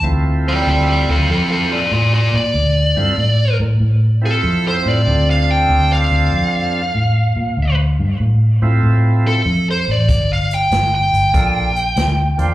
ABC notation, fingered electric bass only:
X:1
M:4/4
L:1/8
Q:"Swing" 1/4=96
K:Dm
V:1 name="Fingered electric bass" clef=bass
D,,2 D,, D,, F,,2 A,, B,, | D,, G,, A,, A,, A,,2 F,, A,, | D,,2 D,, D,, F,,2 A,, B,, | D,, G,, A,, A,, A,,2 F,, A,,, |
G,,,2 G,,, G,,, B,,,2 D,, E,, |]